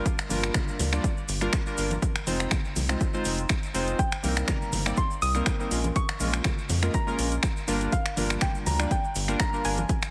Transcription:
0.06 kick, closed hi-hat, shaker
0.19 finger snap, closed hi-hat, shaker
0.29 G1 G3 A#3 D4 F4 A#4, open hi-hat, high conga, shaker
0.43 finger snap, closed hi-hat, shaker
0.54 finger snap, kick, closed hi-hat, low conga, shaker
0.68 shaker
0.79 D2, open hi-hat, high conga, low conga, shaker
0.92 G3 A#3 D4 F4 D5, finger snap, closed hi-hat, shaker
1.04 kick, closed hi-hat, shaker
1.17 shaker
1.29 G1, open hi-hat, shaker
1.41 G3 A#3 D4 F4 A#4, finger snap, closed hi-hat, shaker
1.53 finger snap, kick, closed hi-hat, shaker
1.66 G3 A#3 D4 F4 A#4, shaker
1.77 G1 G3 A#3 D4 F4 A#4, open hi-hat, shaker
1.90 closed hi-hat, high conga, shaker
2.02 kick, closed hi-hat, shaker
2.16 finger snap, closed hi-hat, shaker
2.27 F1 G#3 C4 D#4 F4 C5, open hi-hat, high conga, shaker
2.40 finger snap, closed hi-hat, shaker
2.51 finger snap, kick, closed hi-hat, low conga, shaker
2.65 shaker
2.76 C2, open hi-hat, high conga, low conga, shaker
2.89 G#3 C4 D#4 F4 C5, finger snap, shaker
3.01 kick, closed hi-hat, shaker
3.13 G#3 C4 D#4 F4 C5, shaker
3.25 F1, open hi-hat, shaker
3.39 closed hi-hat, shaker
3.49 finger snap, kick, closed hi-hat, shaker
3.63 closed hi-hat, shaker
3.74 F1 G#3 C4 D#4 F4 C5, open hi-hat, shaker
3.88 closed hi-hat, shaker
3.99 G5, kick, closed hi-hat, shaker
4.12 finger snap, closed hi-hat, shaker
4.23 C2 G3 A#3 C4 D#4 A#4, open hi-hat, high conga, shaker
4.36 finger snap, closed hi-hat, shaker
4.48 A#5, finger snap, kick, closed hi-hat, low conga, shaker
4.62 shaker
4.72 G1, open hi-hat, high conga, low conga, shaker
4.86 G3 A#3 C4 D#4 D5, finger snap, shaker
4.97 C6, kick, closed hi-hat, shaker
5.11 shaker
5.22 C2 D#6, open hi-hat, shaker
5.35 G3 A#3 C4 D#4 A#4, finger snap, closed hi-hat, shaker
5.46 finger snap, kick, closed hi-hat, shaker
5.59 G3 A#3 C4 D#4 A#4, shaker
5.71 A#1 G#3 A#3 C#4 F4 A#4, open hi-hat, shaker
5.84 closed hi-hat, high conga, shaker
5.96 C#6, kick, closed hi-hat, shaker
6.09 finger snap, closed hi-hat, shaker
6.20 A#1 G#3 A#3 C#4 F4 A#4, open hi-hat, high conga, shaker
6.33 finger snap, closed hi-hat, shaker
6.44 finger snap, kick, closed hi-hat, low conga, shaker
6.58 shaker
6.69 F2, open hi-hat, high conga, low conga, shaker
6.82 G#3 A#3 C#4 F4 A#4, finger snap, closed hi-hat, shaker
6.94 A#5, kick, closed hi-hat, shaker
7.07 G#3 A#3 C#4 F4 A#4, shaker
7.19 A#1, open hi-hat, shaker
7.32 closed hi-hat, shaker
7.43 finger snap, kick, closed hi-hat, shaker
7.57 shaker
7.67 G1 G3 A#3 D4 F4 A#4, open hi-hat, shaker
7.81 closed hi-hat, shaker
7.92 F5, kick, closed hi-hat, shaker
8.06 finger snap, closed hi-hat, shaker
8.16 G1 G3 A#3 D4 F4 A#4, open hi-hat, high conga, shaker
8.30 finger snap, shaker
8.41 G5, finger snap, kick, closed hi-hat, low conga, shaker
8.55 shaker
8.66 D2 A#5, open hi-hat, high conga, low conga, shaker
8.79 G3 A#3 D4 F4 D5, finger snap, closed hi-hat, shaker
8.91 G5, kick, closed hi-hat, shaker
9.04 shaker
9.15 G1, open hi-hat, shaker
9.28 G3 A#3 D4 F4 A#4, finger snap, closed hi-hat, shaker
9.40 A#5, finger snap, kick, closed hi-hat, shaker
9.53 G3 A#3 D4 F4 A#4, shaker
9.64 G1 G3 A#3 D4 F4 A#4 G#5, open hi-hat, shaker
9.77 closed hi-hat, high conga, shaker
9.89 kick, closed hi-hat, shaker
10.02 finger snap, closed hi-hat, shaker

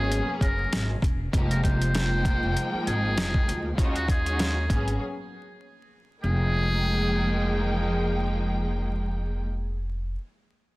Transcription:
Already playing: G#1 F#3 A#3 B3 C#4 G#4
0.12 closed hi-hat
0.29 muted upright bass stroke
0.41 F#1 A#4, kick, closed hi-hat
0.73 G#1, snare, closed hi-hat
1.02 E1, kick, closed hi-hat
1.33 F1 F3 G#3 A#3 D#4 G4, kick, closed hi-hat
1.50 A#4, closed hi-hat
1.63 C5, kick, closed hi-hat
1.82 closed hi-hat
1.95 F3 G#3 A#3 D#4 G5, snare, closed hi-hat
2.25 kick, closed hi-hat
2.43 F1
2.57 closed hi-hat
2.74 muted upright bass stroke
2.87 G#1 G#4, closed hi-hat
3.17 F1, snare, closed hi-hat
3.34 kick
3.48 D2, closed hi-hat
3.76 D#2 G#3 C#4 D#4 F4 F#4, kick, closed hi-hat
3.95 F#4, closed hi-hat
4.08 G#4, kick, closed hi-hat
4.24 G#3 C#4 D#4 F4 F#4, closed hi-hat
4.39 snare, closed hi-hat
4.68 G#1 F#3 A#3 B3 C#4 G#4, kick, closed hi-hat
4.88 closed hi-hat
6.22 F1 F3 G#3 A#3 D#4 G#4 G5

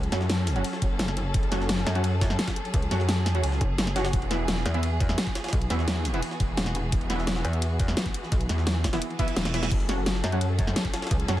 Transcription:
Already playing: C#2 F#3 C#4 G#4 A4
0.03 closed hi-hat
0.12 F#2 F#3 C#4 F#4, snare, closed hi-hat, ride
0.21 snare
0.29 snare, closed hi-hat, ride
0.47 open hi-hat, ride
0.56 F#3 C#4 F#4, closed hi-hat
0.64 closed hi-hat, open hi-hat
0.73 snare
0.82 F#1, kick, closed hi-hat, ride
0.99 F#1, snare, closed hi-hat, ride
1.08 snare, closed hi-hat
1.17 closed hi-hat, ride
1.34 F#1, kick, closed hi-hat, ride
1.43 ride
1.52 F#3 C#4 F#4, snare, closed hi-hat, ride
1.60 snare
1.69 snare, closed hi-hat, ride
1.78 snare
1.86 F#2, snare, closed hi-hat, ride
1.95 F#3 C#4 F#4, closed hi-hat
2.04 closed hi-hat, ride
2.21 kick, snare, closed hi-hat, ride
2.30 snare
2.39 snare, closed hi-hat, ride
2.48 kick, snare, closed hi-hat, ride
2.56 closed hi-hat
2.65 ride
2.74 C#2, kick, closed hi-hat, ride
2.82 closed hi-hat
2.91 F#2 F#3 C#4 F#4, snare, closed hi-hat, ride
3.00 snare
3.09 snare, closed hi-hat, ride
3.26 snare, open hi-hat, ride
3.35 F#3 C#4 F#4, closed hi-hat
3.44 C#2, closed hi-hat, open hi-hat
3.52 snare
3.61 F#1, kick, closed hi-hat
3.78 snare, closed hi-hat, ride
3.87 snare, closed hi-hat
3.96 F#3 C#4 F#4, snare, closed hi-hat, ride
4.05 snare, ride
4.13 E1 E3 B3 F#4, kick, closed hi-hat, ride
4.22 ride
4.31 E3 B3 E4, snare, closed hi-hat, ride
4.48 snare, closed hi-hat, ride
4.57 snare
4.66 E2, snare, closed hi-hat, ride
4.74 E3 B3 E4, closed hi-hat
4.83 closed hi-hat, ride
5.00 kick, closed hi-hat, ride
5.09 snare
5.18 snare, closed hi-hat, ride
5.27 kick, closed hi-hat
5.35 snare, closed hi-hat, ride
5.44 snare, ride
5.48 snare, ride
5.53 B1, kick, closed hi-hat, ride
5.62 closed hi-hat
5.70 E2 E3 B3 E4, snare, closed hi-hat, ride
5.79 snare
5.88 snare, closed hi-hat, ride
6.05 open hi-hat, ride
6.14 E3 B3 E4, closed hi-hat
6.23 closed hi-hat, open hi-hat
6.31 snare
6.40 E1, kick, closed hi-hat, ride
6.57 E1, snare, closed hi-hat, ride
6.66 snare, closed hi-hat
6.75 closed hi-hat, ride
6.92 E1, kick, closed hi-hat, ride
7.01 ride
7.10 E3 B3 E4, snare, closed hi-hat, ride
7.19 snare
7.27 snare, closed hi-hat, ride
7.36 snare
7.45 E2, closed hi-hat, ride
7.53 closed hi-hat
7.62 closed hi-hat, ride
7.80 kick, closed hi-hat, ride
7.88 snare
7.97 snare, closed hi-hat, ride
8.06 kick, closed hi-hat
8.14 closed hi-hat, ride
8.23 snare
8.32 B1, kick, closed hi-hat, ride
8.41 closed hi-hat
8.49 E2, snare, closed hi-hat, ride
8.58 snare
8.67 snare, closed hi-hat, ride
8.84 kick, snare, open hi-hat, ride
8.93 E3 B3 E4, snare, closed hi-hat, ride
9.02 closed hi-hat, ride, reverse cymbal
9.10 ride
9.19 E3 B3 E4, kick, closed hi-hat, ride
9.28 closed hi-hat, ride
9.37 E1, snare, closed hi-hat, ride
9.45 snare, closed hi-hat, ride
9.54 E3 B3 E4, snare, closed hi-hat, ride
9.63 snare, ride
9.71 F#1 F#3 C#4 G#4 A4, kick, closed hi-hat, crash, ride
9.80 ride
9.89 F#3 C#4 F#4, snare, closed hi-hat, ride
10.06 snare, closed hi-hat, ride
10.15 snare
10.24 F#2, snare, closed hi-hat, ride
10.32 F#3 C#4 F#4, closed hi-hat
10.41 closed hi-hat, ride
10.59 kick, closed hi-hat, ride
10.67 snare
10.76 snare, closed hi-hat, ride
10.85 kick, closed hi-hat
10.94 snare, closed hi-hat, ride
11.02 snare, ride
11.07 snare, ride
11.11 C#2, kick, closed hi-hat, ride
11.20 closed hi-hat
11.28 F#2 F#3 C#4 F#4, snare, closed hi-hat, ride

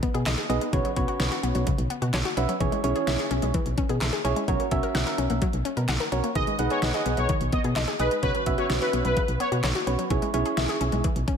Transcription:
0.03 B3, kick, closed hi-hat
0.14 B2 G#4, closed hi-hat
0.26 B1 D#5, snare, clap, closed hi-hat
0.38 G#4, closed hi-hat
0.49 B1 B3 D#4 G#4 B4 D#5, closed hi-hat
0.61 G#3, closed hi-hat
0.73 B1 C#3 C#4 F#4 B4 C#5, kick, closed hi-hat
0.85 F#3, closed hi-hat
0.96 B1 B3 C#4 F#4 B4 C#5, kick, closed hi-hat
1.08 F#4, closed hi-hat
1.20 B1 C#5, snare, closed hi-hat
1.32 F#4, closed hi-hat
1.43 B1 B3, closed hi-hat
1.55 B1 F#3, closed hi-hat
1.67 C#3, kick, closed hi-hat
1.78 B1, closed hi-hat
1.90 B3, closed hi-hat
2.02 B2 F#4, closed hi-hat
2.13 B1 C#5, snare, clap, closed hi-hat
2.25 F#4, closed hi-hat
2.37 B1 B3 C#4 F#4 B4 E5, closed hi-hat
2.49 F#3, closed hi-hat
2.60 B1 E3 C#4 E4 G#4 C#5, kick, closed hi-hat
2.72 G#3, closed hi-hat
2.84 B1 C#4 E4 G#4 C#5, closed hi-hat
2.96 G#4, closed hi-hat
3.07 B1 E5, snare, closed hi-hat
3.19 G#4, closed hi-hat
3.31 B1 C#4, closed hi-hat
3.42 B1 G#3, closed hi-hat
3.54 E3, kick, closed hi-hat
3.66 B1, closed hi-hat
3.78 C#4, kick, closed hi-hat
3.89 B2 G#4, closed hi-hat
4.01 B1 E5, snare, clap, closed hi-hat
4.13 G#4, closed hi-hat
4.25 B1 C#4 E4 G#4 C#5, closed hi-hat
4.36 G#3, closed hi-hat
4.48 B1 F#3 C#4 F#4 A#4 C#5, kick, closed hi-hat
4.60 A#3, closed hi-hat
4.71 B1 C#4 F#4 A#4 E5, kick, closed hi-hat
4.83 A#4, closed hi-hat
4.95 B1 F#5, snare, closed hi-hat
5.07 A#4, closed hi-hat
5.18 B1 C#4, closed hi-hat
5.30 B1 A#3, closed hi-hat
5.42 F#3, kick, closed hi-hat
5.53 B1, closed hi-hat
5.65 C#4, closed hi-hat
5.77 B2 A#4, closed hi-hat
5.88 B1 F#5, snare, clap, closed hi-hat
6.00 A#4, closed hi-hat
6.12 B1 C#4 F#4 A#4 C#5, closed hi-hat
6.24 A#3, closed hi-hat
6.35 B1 D#3 D#4 G#4 B4 D#5, kick, closed hi-hat
6.47 G#3, closed hi-hat
6.59 B1 B3 D#4 G#4 B4 F#5, closed hi-hat
6.70 G#4 C#5, closed hi-hat
6.82 B1 D#5, snare, closed hi-hat
6.94 G#4 D#5, closed hi-hat
7.06 B1 B3, closed hi-hat
7.17 B1 G#3 C#5, closed hi-hat
7.29 D#3, kick, closed hi-hat
7.41 B1, closed hi-hat
7.52 B3 D#5, kick, closed hi-hat
7.64 B2 G#4, closed hi-hat
7.76 B1 D#5, snare, clap, closed hi-hat
7.88 G#4, closed hi-hat
7.99 B1 B3 D#4 G#4 B4 D#5, closed hi-hat
8.11 G#3, closed hi-hat
8.23 B1 C#3 C#4 F#4 B4 C#5, kick, closed hi-hat
8.35 F#3, closed hi-hat
8.46 B1 B3 C#4 F#4 B4 E5, kick, closed hi-hat
8.58 F#4 C#5, closed hi-hat
8.70 B1 C#5, snare, closed hi-hat
8.81 F#4 B4, closed hi-hat
8.93 B1 B3, closed hi-hat
9.05 B1 F#3 B4, closed hi-hat
9.17 C#3, kick, closed hi-hat
9.28 B1, closed hi-hat
9.40 B3 C#5, closed hi-hat
9.52 B2 F#4, closed hi-hat
9.63 B1 C#5, snare, clap, closed hi-hat
9.75 F#4, closed hi-hat
9.87 B1 B3 C#4 F#4 B4 C#5, closed hi-hat
9.99 F#3, closed hi-hat
10.10 B1 E3 C#4 E4 G#4 C#5, kick, closed hi-hat
10.22 G#3, closed hi-hat
10.34 B1 C#4 E4 G#4 C#5, closed hi-hat
10.46 G#4, closed hi-hat
10.57 B1 E5, snare, closed hi-hat
10.69 G#4, closed hi-hat
10.81 B1 C#4, closed hi-hat
10.92 B1 G#3, closed hi-hat
11.04 E3, kick, closed hi-hat
11.16 B1, closed hi-hat
11.28 C#4, kick, closed hi-hat

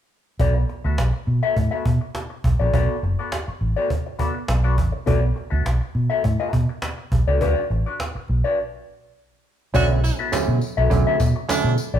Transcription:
0.39 B1 B3 F#4 A4 D5, cajon bass
0.55 muted hollow-body jazz guitar stroke
0.69 muted hollow-body jazz guitar stroke, cajon slap
0.84 D2 B3 F#4 A4 E5
0.98 B1, muted hollow-body jazz guitar stroke, cajon slap
1.13 muted hollow-body jazz guitar stroke
1.27 B2, cajon slap
1.43 B3 F#4 A4 E5
1.56 A2, muted hollow-body jazz guitar stroke, cajon bass
1.71 B3 F#4 A4 E5
1.85 B2, muted hollow-body jazz guitar stroke, cajon bass
2.01 muted hollow-body jazz guitar stroke
2.15 muted hollow-body jazz guitar stroke, cajon slap
2.30 muted hollow-body jazz guitar stroke
2.44 B1, cajon bass
2.59 A#1 B3 F#4 A4 D5
2.74 B1 B3 F#4 A4 D5, cajon bass
3.03 F#1, muted hollow-body jazz guitar stroke, cajon slap
3.19 B3 F#4 A4 D5
3.32 muted hollow-body jazz guitar stroke, cajon slap
3.48 muted fingered electric bass stroke, muted hollow-body jazz guitar stroke
3.61 A1, cajon slap
3.76 B3 F#4 A4 D5
3.90 muted hollow-body jazz guitar stroke, cajon bass
4.06 muted hollow-body jazz guitar stroke
4.19 B3 F#4 A4 D5, cajon bass
4.34 muted hollow-body jazz guitar stroke
4.48 B1, muted hollow-body jazz guitar stroke, cajon slap
4.64 B3 F#4 A4 D5
4.77 A1, muted hollow-body jazz guitar stroke, cajon bass
4.92 muted hollow-body jazz guitar stroke
5.06 B1 B3 F#4 A4 D5, cajon bass
5.21 muted hollow-body jazz guitar stroke
5.35 muted hollow-body jazz guitar stroke, cajon slap
5.50 D2 B3 F#4 A4 E5
5.65 B1, muted hollow-body jazz guitar stroke, cajon slap
5.81 muted hollow-body jazz guitar stroke
5.95 B2, cajon slap
6.10 B3 F#4 A4 E5
6.24 A2, muted hollow-body jazz guitar stroke, cajon bass
6.40 B3 F#4 A4 E5
6.53 B2, muted hollow-body jazz guitar stroke, cajon bass
6.69 muted hollow-body jazz guitar stroke
6.82 muted hollow-body jazz guitar stroke, cajon slap
6.98 muted hollow-body jazz guitar stroke
7.12 B1, cajon bass
7.28 C#2 B3 F#4 A4 D5
7.41 D2 D4 F#4 B4 D5, cajon bass
7.70 A1, muted hollow-body jazz guitar stroke, cajon slap
7.86 D4 F#4 B4 D5
8.00 muted hollow-body jazz guitar stroke, cajon slap
8.15 muted fingered electric bass stroke, muted hollow-body jazz guitar stroke
8.28 B1, cajon slap
8.44 D4 F#4 B4 D5
9.74 B1 D3 F#3 A3 B3 C#4 F#4 A4 D5, cajon bass, tambourine
9.90 muted hollow-body jazz guitar stroke
10.04 E4, muted hollow-body jazz guitar stroke, cajon slap, tambourine
10.19 B3 F#4 A4 E5
10.32 D3 F#3 A3 C#4, muted fingered electric bass stroke, cajon slap, tambourine
10.48 B2, muted hollow-body jazz guitar stroke
10.61 cajon slap, tambourine
10.77 B1 B3 F#4 A4 E5, cajon slap
10.90 B1 D3 F#3 A3 C#4, muted hollow-body jazz guitar stroke, cajon bass, tambourine
11.07 B3 F#4 A4 E5
11.20 B2, muted hollow-body jazz guitar stroke, cajon bass, tambourine
11.36 muted hollow-body jazz guitar stroke
11.49 D3 F#3 A3 C#4 D4, muted hollow-body jazz guitar stroke, cajon slap, tambourine
11.64 B2, muted hollow-body jazz guitar stroke
11.78 tambourine
11.94 A#1 B3 F#4 A4 D5, cajon slap

